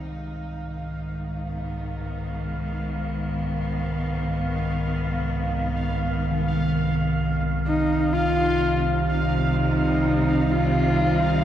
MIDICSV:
0, 0, Header, 1, 6, 480
1, 0, Start_track
1, 0, Tempo, 941915
1, 35, Time_signature, 4, 2, 24, 8
1, 1956, Tempo, 952381
1, 5787, End_track
2, 0, Start_track
2, 0, Title_t, "Synth texture"
2, 0, Program_c, 0, 99
2, 0, Note_on_c, 0, 77, 77
2, 5787, Note_off_c, 0, 77, 0
2, 5787, End_track
3, 0, Start_track
3, 0, Title_t, "Horsehead fiddle"
3, 0, Program_c, 1, 110
3, 3885, Note_on_c, 1, 63, 102
3, 4120, Note_on_c, 1, 65, 114
3, 4128, Note_off_c, 1, 63, 0
3, 4600, Note_off_c, 1, 65, 0
3, 4834, Note_on_c, 1, 63, 94
3, 5317, Note_on_c, 1, 65, 104
3, 5325, Note_off_c, 1, 63, 0
3, 5787, Note_off_c, 1, 65, 0
3, 5787, End_track
4, 0, Start_track
4, 0, Title_t, "Cello section"
4, 0, Program_c, 2, 48
4, 0, Note_on_c, 2, 63, 70
4, 45, Note_on_c, 2, 44, 74
4, 310, Note_on_c, 2, 51, 65
4, 756, Note_on_c, 2, 59, 74
4, 1565, Note_off_c, 2, 63, 0
4, 3885, Note_off_c, 2, 51, 0
4, 3886, Note_off_c, 2, 59, 0
4, 3886, Note_on_c, 2, 48, 85
4, 3891, Note_off_c, 2, 44, 0
4, 4313, Note_on_c, 2, 55, 62
4, 5165, Note_on_c, 2, 60, 67
4, 5479, Note_on_c, 2, 63, 82
4, 5787, Note_off_c, 2, 48, 0
4, 5787, Note_off_c, 2, 55, 0
4, 5787, Note_off_c, 2, 60, 0
4, 5787, Note_off_c, 2, 63, 0
4, 5787, End_track
5, 0, Start_track
5, 0, Title_t, "Bronze metallophone"
5, 0, Program_c, 3, 11
5, 3203, Note_on_c, 3, 51, 40
5, 5787, Note_off_c, 3, 51, 0
5, 5787, End_track
6, 0, Start_track
6, 0, Title_t, "Synth drone"
6, 0, Program_c, 4, 95
6, 0, Note_on_c, 4, 36, 75
6, 0, Note_on_c, 4, 51, 76
6, 5787, Note_off_c, 4, 36, 0
6, 5787, Note_off_c, 4, 51, 0
6, 5787, End_track
0, 0, End_of_file